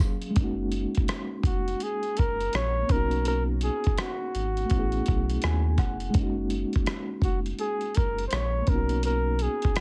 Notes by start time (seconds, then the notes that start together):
Already playing: F#3 A#3 C#4 G#4 F5
0.00 kick, cross-stick
0.22 closed hi-hat
0.30 G#3 A3
0.36 F#1 C#4, kick, closed hi-hat
0.40 A#3 D#4 F#4
0.72 closed hi-hat
0.95 kick, closed hi-hat
1.08 cross-stick, closed hi-hat
1.43 F1 F#4, kick, closed hi-hat
1.68 closed hi-hat
1.80 G#4, closed hi-hat
2.03 closed hi-hat
2.17 F#1 A#4, kick, closed hi-hat
2.41 closed hi-hat
2.53 A#1 C#5, cross-stick, closed hi-hat
2.83 A#3 B3
2.89 B1 C#4 D#4 A#4, kick, closed hi-hat
2.96 F#4
3.11 closed hi-hat
3.25 A#4, closed hi-hat
3.61 G#4, closed hi-hat
3.84 kick, closed hi-hat
3.98 F#4, cross-stick, closed hi-hat
4.35 G#1, closed hi-hat
4.57 closed hi-hat
4.66 A3 B3
4.70 A1 C#4, kick, closed hi-hat
4.76 E4 G#4
4.92 closed hi-hat
5.06 B1, kick, closed hi-hat
5.30 closed hi-hat
5.42 D#2 G#5, cross-stick, closed hi-hat
5.78 F1 F#5, kick, cross-stick, closed hi-hat
6.00 closed hi-hat
6.10 G#3 A#3, closed hi-hat
6.15 F#1 C#4, kick
6.20 D#4 F#4
6.50 closed hi-hat
6.73 kick, closed hi-hat
6.86 cross-stick, closed hi-hat
7.22 F1 F#4, kick, closed hi-hat
7.46 closed hi-hat
7.59 G#4, closed hi-hat
7.81 closed hi-hat
7.95 F#1 A#4, kick, closed hi-hat
8.18 closed hi-hat
8.28 C5, closed hi-hat
8.32 A#1 C#5, cross-stick
8.62 A#3 B3
8.67 B1 C#4 A#4, kick, closed hi-hat
8.72 D#4 F#4
8.89 closed hi-hat
9.03 A#4, closed hi-hat
9.39 G#4, closed hi-hat
9.62 kick, closed hi-hat
9.76 cross-stick, closed hi-hat